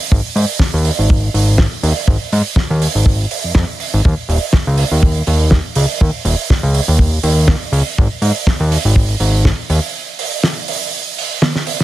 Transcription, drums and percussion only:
0.12 kick
0.37 open hi-hat
0.59 kick, snare
0.85 open hi-hat
1.10 kick
1.35 open hi-hat
1.58 kick, snare
1.84 open hi-hat
2.08 kick
2.33 open hi-hat
2.56 kick, snare
2.82 open hi-hat
3.06 kick
3.31 open hi-hat
3.55 kick, snare
3.80 open hi-hat
4.05 kick
4.30 open hi-hat
4.53 kick, snare
4.78 open hi-hat
5.03 kick
5.27 open hi-hat
5.51 kick, snare
5.75 open hi-hat
6.01 kick
6.25 open hi-hat
6.50 kick, snare
6.74 open hi-hat
6.99 kick
7.23 open hi-hat
7.48 kick, snare
7.73 open hi-hat
7.98 kick
8.22 open hi-hat
8.47 kick, snare
8.72 open hi-hat
8.96 kick
9.20 open hi-hat
9.45 kick, snare
9.70 open hi-hat
10.19 open hi-hat
10.43 snare
10.68 open hi-hat
11.18 open hi-hat
11.42 snare, high tom
11.55 snare
11.67 open hi-hat
11.80 snare

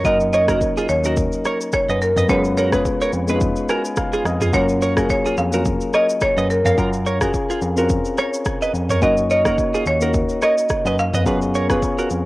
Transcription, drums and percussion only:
0.05 kick, shaker
0.20 shaker
0.33 shaker
0.48 kick, cross-stick, shaker
0.61 kick, shaker
0.77 shaker
0.89 shaker
1.04 shaker
1.17 kick, shaker
1.32 shaker
1.45 cross-stick, shaker
1.61 shaker
1.72 kick, cross-stick, shaker
1.89 shaker
2.02 shaker
2.17 mid tom, shaker
2.29 kick, shaker
2.44 shaker
2.57 shaker
2.72 kick, cross-stick, shaker
2.85 kick, shaker
3.01 shaker
3.13 shaker
3.28 shaker
3.41 kick, shaker
3.56 shaker
3.69 cross-stick, shaker
3.85 shaker
3.96 kick, cross-stick, shaker
4.13 shaker
4.25 cross-stick, shaker
4.41 mid tom, shaker
4.53 kick, shaker
4.69 shaker
4.82 shaker
4.97 kick, cross-stick, shaker
5.10 kick, shaker
5.26 shaker
5.37 shaker
5.53 shaker
5.65 kick, shaker
5.81 shaker
5.93 cross-stick, shaker
6.10 shaker
6.21 kick, cross-stick, shaker
6.38 shaker
6.50 shaker
6.65 mid tom, shaker
6.78 kick, shaker
6.93 shaker
7.06 shaker
7.21 kick, cross-stick, shaker
7.34 kick, shaker
7.50 shaker
7.62 shaker
7.77 shaker
7.90 kick, shaker
8.05 shaker
8.18 cross-stick, shaker
8.34 shaker
8.45 kick, cross-stick, shaker
8.62 shaker
8.75 shaker
8.90 mid tom, shaker
9.02 kick, shaker
9.17 shaker
9.30 shaker
9.45 kick, cross-stick, shaker
9.58 kick, shaker
9.74 shaker
9.86 shaker
10.01 shaker
10.14 kick, shaker
10.29 shaker
10.42 cross-stick, shaker
10.58 shaker
10.69 kick, cross-stick, shaker
10.86 shaker
10.99 shaker
11.14 mid tom, shaker
11.26 kick, shaker
11.42 shaker
11.55 shaker
11.70 kick, cross-stick, shaker
11.82 kick, shaker
11.99 shaker
12.10 shaker

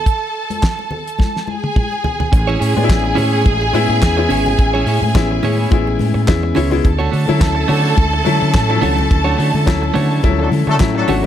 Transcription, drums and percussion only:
0.06 kick, closed hi-hat
0.50 closed hi-hat, high conga
0.62 kick, snare, clap, closed hi-hat, muted conga
0.79 muted conga
0.91 low conga
1.08 closed hi-hat
1.19 kick, snare, muted conga, high conga
1.36 snare
1.48 high conga
1.64 high tom
1.76 kick, mid tom, muted conga, high conga
1.92 muted conga
2.04 floor tom, low conga
2.20 floor tom, low conga
2.33 kick, closed hi-hat, muted conga
2.50 muted conga
2.62 open hi-hat
2.77 high conga
2.89 kick, snare, clap, closed hi-hat, muted conga
3.06 muted conga
3.17 open hi-hat, low conga
3.45 kick, closed hi-hat, muted conga, high conga
3.62 muted conga
3.73 open hi-hat, high conga
4.02 kick, snare, clap, closed hi-hat
4.18 muted conga
4.30 open hi-hat, low conga
4.46 low conga
4.59 kick, closed hi-hat, muted conga
4.75 muted conga
4.87 open hi-hat
5.03 high conga
5.15 kick, snare, clap, closed hi-hat, muted conga
5.43 open hi-hat, low conga
5.71 kick, closed hi-hat, high conga
5.87 muted conga
5.99 open hi-hat, high conga
6.28 kick, snare, clap, closed hi-hat, muted conga
6.43 muted conga
6.55 open hi-hat, low conga
6.71 low conga
6.84 kick, closed hi-hat, muted conga
7.00 muted conga
7.13 open hi-hat
7.28 high conga
7.41 kick, snare, clap, closed hi-hat
7.69 open hi-hat, low conga
7.97 kick, closed hi-hat, muted conga, high conga
8.25 open hi-hat, high conga
8.54 kick, snare, clap, closed hi-hat
8.70 muted conga
8.82 open hi-hat, low conga
8.98 low conga
9.11 kick, closed hi-hat
9.40 open hi-hat
9.55 high conga
9.67 kick, snare, clap, closed hi-hat, muted conga
9.84 muted conga
9.96 open hi-hat, low conga
10.23 kick, closed hi-hat, high conga
10.52 open hi-hat, high conga
10.80 kick, snare, clap, closed hi-hat
11.08 open hi-hat, low conga

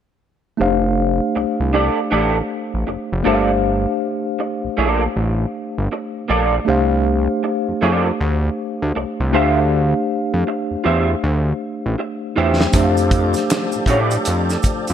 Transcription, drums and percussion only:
12.61 snare
12.73 kick, closed hi-hat, maracas
12.97 closed hi-hat, maracas
13.11 kick, closed hi-hat
13.34 snare, closed hi-hat, maracas
13.50 finger snap, snare, closed hi-hat, maracas
13.72 maracas
13.86 kick, closed hi-hat
14.11 closed hi-hat, maracas
14.25 closed hi-hat, maracas
14.50 snare, maracas
14.63 kick, closed hi-hat, maracas
14.87 closed hi-hat, maracas

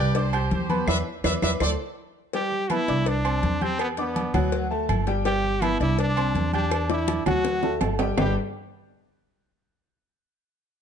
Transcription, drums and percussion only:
0.15 cowbell, low agogo
0.33 high conga, low agogo, claves
0.51 cowbell, high conga
0.70 high conga, low agogo
0.88 cowbell, high conga, high timbale, claves
1.24 cowbell, high conga, high timbale, claves
1.42 cowbell, high conga, high timbale, claves
1.60 cowbell, high conga, high timbale, claves
2.33 cowbell, high conga, low agogo
2.52 high conga
2.70 cowbell, high conga, low agogo, claves
2.88 cowbell, high conga
3.06 cowbell, high conga, low agogo
3.25 high conga, low agogo, claves
3.43 cowbell, high conga
3.61 high conga, low agogo
3.79 cowbell, high conga, low agogo, claves
3.97 cowbell, high conga
4.16 cowbell, high conga, low agogo
4.34 low conga, low agogo, claves
4.52 cowbell, high conga
4.71 high conga
4.89 cowbell, high conga, low agogo, claves
5.07 cowbell
5.25 cowbell, high conga, low agogo
5.44 high conga
5.62 cowbell, high conga, low agogo, claves
5.80 cowbell, high conga
5.99 cowbell, high conga, low agogo
6.17 high conga, low agogo, claves
6.35 cowbell, high conga
6.53 high conga, low agogo
6.71 cowbell, high bongo, high conga, low agogo, claves
6.90 cowbell, high bongo, high conga
7.08 cowbell, high bongo, high conga, low agogo
7.26 low bongo, low conga, high timbale, low agogo, claves
7.45 cowbell, low bongo, high conga
7.63 low bongo, high conga, high timbale
7.81 cowbell, low bongo, high conga, low timbale, low agogo, claves
7.99 cowbell, low bongo, low timbale
8.18 low bongo, low conga, low timbale, claves

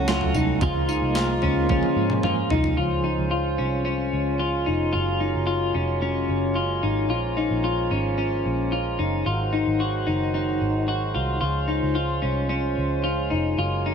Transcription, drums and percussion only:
0.08 snare, tambourine
0.21 floor tom
0.34 floor tom, tambourine
0.61 kick, floor tom, tambourine
0.89 tambourine
1.15 snare, tambourine
1.42 floor tom
1.69 kick, high tom
1.83 high tom
2.10 mid tom
2.23 mid tom
2.50 floor tom
2.64 floor tom

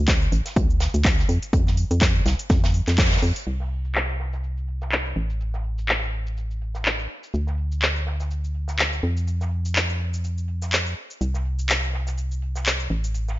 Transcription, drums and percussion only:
0.08 kick, snare, clap, closed hi-hat, shaker
0.22 shaker
0.32 closed hi-hat, open hi-hat
0.45 snare, closed hi-hat, shaker
0.56 kick, closed hi-hat, shaker
0.70 shaker
0.80 snare, closed hi-hat, open hi-hat
0.94 closed hi-hat, shaker
1.04 kick, snare, clap, closed hi-hat, shaker
1.19 snare, shaker
1.29 closed hi-hat, open hi-hat
1.43 closed hi-hat, shaker
1.53 kick, closed hi-hat, shaker
1.67 snare, shaker
1.77 closed hi-hat, open hi-hat
1.91 closed hi-hat, shaker
2.01 kick, snare, clap, closed hi-hat, shaker
2.15 shaker
2.26 snare, closed hi-hat, open hi-hat
2.39 closed hi-hat, shaker
2.50 kick, snare, closed hi-hat, shaker
2.64 snare, closed hi-hat, shaker
2.74 open hi-hat
2.88 snare, clap, closed hi-hat, shaker
2.98 kick, snare, clap, closed hi-hat, shaker
3.05 snare, closed hi-hat
3.11 snare, closed hi-hat, shaker
3.17 snare, closed hi-hat
3.22 open hi-hat
3.36 closed hi-hat, shaker
3.47 closed hi-hat, crash, shaker
3.60 snare, shaker
3.71 closed hi-hat
3.85 shaker
3.95 clap, shaker
4.09 shaker
4.19 snare, closed hi-hat
4.33 snare, shaker
4.43 closed hi-hat, shaker
4.57 shaker
4.68 closed hi-hat
4.81 snare, shaker
4.92 clap, shaker
5.06 shaker
5.17 closed hi-hat
5.30 shaker
5.41 closed hi-hat, shaker
5.54 snare, shaker
5.64 closed hi-hat
5.78 shaker
5.88 clap, closed hi-hat, shaker
6.02 shaker
6.13 closed hi-hat
6.27 shaker
6.37 closed hi-hat, shaker
6.51 shaker
6.61 closed hi-hat
6.75 snare, shaker
6.85 clap, shaker
6.99 shaker
7.10 open hi-hat
7.23 shaker
7.34 closed hi-hat, shaker
7.47 snare, shaker
7.58 closed hi-hat
7.72 shaker
7.82 clap, shaker
7.96 shaker
8.07 snare, closed hi-hat
8.20 snare, shaker
8.31 closed hi-hat, shaker
8.44 shaker
8.55 closed hi-hat
8.68 snare, shaker
8.79 clap, closed hi-hat, shaker
8.93 shaker
9.03 closed hi-hat
9.17 shaker
9.27 closed hi-hat, shaker
9.41 snare, shaker
9.51 closed hi-hat
9.65 shaker
9.76 clap, shaker
9.89 shaker
10.00 closed hi-hat
10.14 shaker
10.24 closed hi-hat, shaker
10.38 shaker
10.48 closed hi-hat
10.62 snare, shaker
10.72 clap, closed hi-hat, shaker
10.86 shaker
10.97 open hi-hat
11.11 shaker
11.21 closed hi-hat, shaker
11.34 snare, shaker
11.45 closed hi-hat
11.59 shaker
11.69 clap, shaker
11.83 shaker
11.93 snare, closed hi-hat
12.07 snare, shaker
12.17 closed hi-hat, shaker
12.32 shaker
12.42 closed hi-hat
12.56 snare, shaker
12.66 clap, closed hi-hat, shaker
12.80 shaker
12.90 closed hi-hat
13.04 shaker
13.14 closed hi-hat, shaker
13.28 snare, shaker

